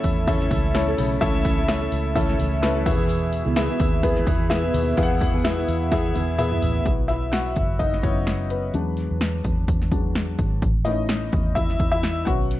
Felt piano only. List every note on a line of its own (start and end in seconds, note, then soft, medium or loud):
0.00 0.97 C#3 medium
0.00 0.27 C#4 medium
0.00 0.27 E4 medium
0.00 0.27 A4 medium
0.00 0.28 E5 medium
0.00 2.87 F#5 medium
0.00 2.88 B5 medium
0.27 0.62 C#4 medium
0.27 0.62 E4 medium
0.27 0.62 A4 medium
0.27 0.62 E5 loud
0.74 1.09 C#4 medium
0.74 1.09 E4 medium
0.74 1.09 A4 medium
0.74 1.09 C#5 loud
0.97 1.64 C#3 medium
1.21 1.56 C#4 loud
1.21 1.56 E4 loud
1.21 1.56 A4 loud
1.21 1.56 E5 loud
1.68 2.03 C#4 loud
1.68 2.03 E4 medium
1.68 2.03 A4 medium
1.68 2.03 E5 loud
2.15 2.50 C#4 medium
2.15 2.50 E4 medium
2.15 2.50 A4 medium
2.15 2.50 E5 loud
2.62 2.86 C#4 medium
2.62 2.85 E4 medium
2.62 2.86 A4 medium
2.62 2.86 B4 loud
2.86 3.53 B2 medium
2.86 3.44 B3 medium
2.86 3.44 E4 medium
2.86 2.92 F#4 medium
2.86 3.44 E5 medium
2.92 3.46 G#4 medium
3.56 3.91 B3 medium
3.56 3.91 E4 medium
3.56 3.91 G#4 medium
3.56 3.91 E5 loud
4.03 4.38 B3 medium
4.03 4.38 E4 medium
4.03 4.38 G#4 medium
4.03 4.38 B4 loud
4.50 4.85 B3 medium
4.50 4.85 E4 medium
4.50 4.85 G#4 medium
4.50 4.85 E5 loud
4.74 5.40 B2 medium
4.97 5.32 B3 loud
4.97 5.32 E4 loud
4.97 5.32 G#4 loud
4.97 5.04 F5 loud
5.03 5.35 F#5 loud
5.44 5.79 B3 medium
5.44 5.79 E4 medium
5.44 5.79 G#4 medium
5.44 5.79 E5 medium
5.92 6.27 B3 medium
5.92 6.27 E4 medium
5.92 6.27 G#4 medium
5.92 6.27 E5 loud
6.39 6.74 B3 medium
6.39 6.73 E4 medium
6.39 6.74 G#4 medium
6.39 6.73 E5 loud
6.85 7.18 F#3 soft
6.85 7.18 B3 soft
6.85 7.09 E4 soft
7.08 7.15 E4 medium
7.08 7.14 E5 medium
7.32 7.77 F#4 medium
7.32 7.81 F#5 medium
7.79 7.86 D#4 medium
7.79 7.85 D#5 medium
8.03 8.25 F#3 soft
8.03 8.25 B3 soft
8.03 8.48 C#4 medium
8.03 8.25 E4 soft
8.03 8.52 C#5 medium
8.50 9.41 B3 soft
8.50 9.41 B4 medium
8.74 9.90 F#3 soft
8.74 9.90 G#3 soft
8.74 9.91 D4 medium
9.91 10.13 F#3 soft
9.91 10.13 G#3 soft
9.91 10.13 D4 soft
10.85 11.18 E3 soft
10.85 11.18 A3 soft
10.85 11.18 C#4 medium
10.85 11.53 D#4 medium
10.85 11.58 D#5 medium
11.55 11.91 E4 medium
11.55 11.90 E5 medium
11.92 12.25 E4 medium
11.92 12.27 E5 medium
12.25 12.60 F#3 soft
12.25 12.60 B3 soft
12.25 12.60 C#4 soft
12.25 12.60 F#4 medium
12.25 12.60 F#5 medium